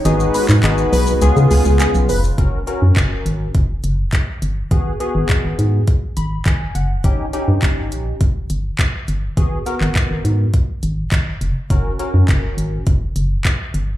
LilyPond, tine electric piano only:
\new Staff \with { instrumentName = "Tine electric piano" } { \time 4/4 \key gis \dorian \tempo 4 = 103 <b dis' fis' gis'>8 r8 <b dis' fis' gis'>4 <b cis' eis' gis'>4. r8 | <cis' fis' ais'>8 <cis' fis' ais'>4. r2 | <b fis' gis'>8 <b fis' gis'>4. r8 b''8 gis''8 fis''8 | <cis' dis' g'>8 <cis' dis' g'>4. r2 |
<b fis' gis'>8 <b fis' ais'>4. r2 | <cis' fis' ais'>8 <cis' fis' ais'>4. r2 | }